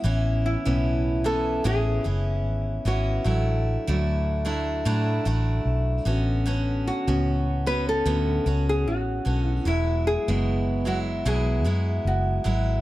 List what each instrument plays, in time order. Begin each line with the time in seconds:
0.04 fingered electric bass A1, steel-string acoustic guitar E3 B3 C#4 E4
0.46 nylon-string guitar E4
0.65 fingered electric bass B1, steel-string acoustic guitar A2 E3 B3 C#4 E4
1.24 steel-string acoustic guitar E3 B3 C#4 E4, nylon-string guitar A4
1.64 fingered electric bass A1, steel-string acoustic guitar A2 E3 B3 C#4 E4, nylon-string guitar G#4
2.04 fingered electric bass F#1, steel-string acoustic guitar E3 B3 C#4 E4
2.45 fingered electric bass G#1
2.85 fingered electric bass G#1, steel-string acoustic guitar E3 B3 C#4 E4, nylon-string guitar F#4
3.24 fingered electric bass A1, steel-string acoustic guitar F#3 A3 D4 E4
3.87 fingered electric bass D2, steel-string acoustic guitar A2 F#3 A3 D4 E4
4.45 steel-string acoustic guitar F#3 A3 D4 E4
4.85 steel-string acoustic guitar A2 F#3 A3 D4 E4, fingered electric bass A2
5.25 fingered electric bass A1, steel-string acoustic guitar F#3 A3 D4 E4
5.65 fingered electric bass B1
6.05 fingered electric bass A1, steel-string acoustic guitar D3 B3 C#4 F#4
6.46 steel-string acoustic guitar D3 B3 C#4 F#4
6.87 nylon-string guitar F#4
7.07 fingered electric bass C#2, steel-string acoustic guitar A2 B3 C#4 F#4
7.66 steel-string acoustic guitar B3 C#4 F#4, nylon-string guitar B4
7.89 nylon-string guitar A4
8.06 fingered electric bass D2, steel-string acoustic guitar A2 D3 B3 C#4 F#4
8.46 fingered electric bass C#2, steel-string acoustic guitar B3 C#4 F#4
8.69 nylon-string guitar G#4
8.86 fingered electric bass A1, nylon-string guitar F#4
9.25 fingered electric bass B1, steel-string acoustic guitar D3 B3 C#4 F#4
9.47 nylon-string guitar E4
9.65 fingered electric bass E1, steel-string acoustic guitar F#3 G#3 B3 E4, nylon-string guitar E4
10.07 nylon-string guitar G#4
10.28 fingered electric bass F#1, steel-string acoustic guitar E2 B2 F#3 G#3 B3 E4
10.85 steel-string acoustic guitar F#3 G#3 B3 E4, nylon-string guitar F#4
11.25 fingered electric bass B1, steel-string acoustic guitar E2 B2 F#3 G#3 B3 E4, nylon-string guitar G#4
11.64 fingered electric bass F#2, steel-string acoustic guitar F#3 G#3 B3 E4
12.05 fingered electric bass F#1, nylon-string guitar F#4
12.44 fingered electric bass G#1, steel-string acoustic guitar F#3 G#3 B3 E4